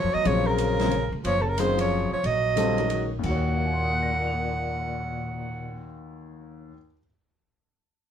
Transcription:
Already playing: tenor saxophone F3, soprano saxophone C#5
0.04 upright bass F2
0.12 upright bass E2, tenor saxophone F#3, soprano saxophone D#5
0.24 upright bass A#1, grand piano C#3 F#3 C4 F4 G#4, tenor saxophone F3, soprano saxophone C#5, ride
0.47 tenor saxophone C#3, soprano saxophone A#4
0.58 hi-hat pedal, ride
0.80 grand piano C#3 F#3 C4 F4 G#4, snare, ride
0.91 ride
1.12 upright bass C#2
1.25 upright bass F#1, tenor saxophone F3, soprano saxophone C#5, ride
1.40 tenor saxophone C3, soprano saxophone A4
1.45 tenor saxophone C#3, soprano saxophone A#4
1.58 grand piano C#3 F#3 C4 F4 G#4, tenor saxophone D#3, soprano saxophone C5, hi-hat pedal, ride
1.77 tenor saxophone F3, soprano saxophone C#5, ride
2.12 tenor saxophone F3, soprano saxophone C#5, muted upright bass stroke
2.24 upright bass A#1, tenor saxophone F#3, soprano saxophone D#5, ride
2.56 grand piano D3 G3 C4 F4 A4, hi-hat pedal, ride
2.78 grand piano D#3 G#3 C#4 F#4 A#4, ride
2.90 ride
3.19 grand piano D#2 D#3, tenor saxophone A#2
3.23 upright bass D#2, grand piano D#4, soprano saxophone F#5, kick, crash
3.28 grand piano F#4 C#5
3.57 grand piano F5
3.65 grand piano G#5
3.74 grand piano C6
3.82 grand piano D#6
3.92 grand piano F#6
4.03 grand piano A#6
4.15 grand piano C#7
4.27 grand piano F7

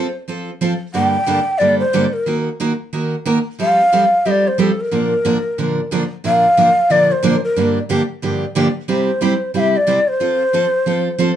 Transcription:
Already playing: shakuhachi C5
0.28 steel-string acoustic guitar F3 C4 F4 A4
0.61 steel-string acoustic guitar F3 C4 F4 A4
0.94 steel-string acoustic guitar G2 D3 G3 A#3 D4 A4, shakuhachi G5
1.26 steel-string acoustic guitar G2 D3 G3 A#3 D4 A4
1.58 steel-string acoustic guitar G2 D3 G3 A#3 D4 A4, shakuhachi D5
1.79 shakuhachi C5
1.93 steel-string acoustic guitar G2 D3 G3 A#3 D4 A4
2.13 shakuhachi A#4
2.26 steel-string acoustic guitar D#3 A#3 D#4 F#4 A#4
2.60 steel-string acoustic guitar D#3 A#3 D#4 F#4 A#4
2.93 steel-string acoustic guitar D#3 A#3 D#4 F#4 A#4
3.26 steel-string acoustic guitar D#3 A#3 D#4 F#4 A#4
3.59 steel-string acoustic guitar F3 G3 C4 G4 A4, shakuhachi F5
3.92 steel-string acoustic guitar F3 G3 C4 G4 A4
4.25 steel-string acoustic guitar F3 G3 C4 G4 A4, shakuhachi D#5
4.31 shakuhachi D5
4.47 shakuhachi C5
4.58 steel-string acoustic guitar F3 G3 C4 G4 A4, shakuhachi A4
4.81 shakuhachi A#4
4.91 steel-string acoustic guitar A#2 D3 F3 A#3 D4 A#4
5.25 steel-string acoustic guitar A#2 D3 F3 A#3 D4 A#4
5.58 steel-string acoustic guitar A#2 D3 F3 A#3 D4 A#4
5.91 steel-string acoustic guitar A#2 D3 F3 A#3 D4 A#4
6.24 steel-string acoustic guitar A#2 D3 F3 A#3 D4 A#4, shakuhachi F5
6.57 steel-string acoustic guitar A#2 D3 F3 A#3 D4 A#4
6.90 steel-string acoustic guitar A#2 D3 F3 A#3 D4 A#4, shakuhachi D5
7.12 shakuhachi C5
7.23 steel-string acoustic guitar A#2 D3 F3 A#3 D4 A#4
7.44 shakuhachi A#4
7.56 steel-string acoustic guitar G2 D3 F3 A#3 D4 G4
7.89 steel-string acoustic guitar G2 D3 F3 A#3 D4 G4
8.22 steel-string acoustic guitar G2 D3 F3 A#3 D4 G4
8.55 steel-string acoustic guitar G2 D3 F3 A#3 D4 G4
8.88 steel-string acoustic guitar C3 G3 C4 E4 G4, shakuhachi C5
9.21 steel-string acoustic guitar C3 G3 C4 E4 G4
9.54 steel-string acoustic guitar C3 G3 C4 E4 G4, shakuhachi F5
9.60 shakuhachi E5
9.77 shakuhachi D5
9.87 steel-string acoustic guitar C3 G3 C4 E4 G4
10.08 shakuhachi C5
10.20 steel-string acoustic guitar F3 C4 F4 A4
10.53 steel-string acoustic guitar F3 C4 F4 A4
10.86 steel-string acoustic guitar F3 C4 F4 A4
11.18 steel-string acoustic guitar F3 C4 F4 A4

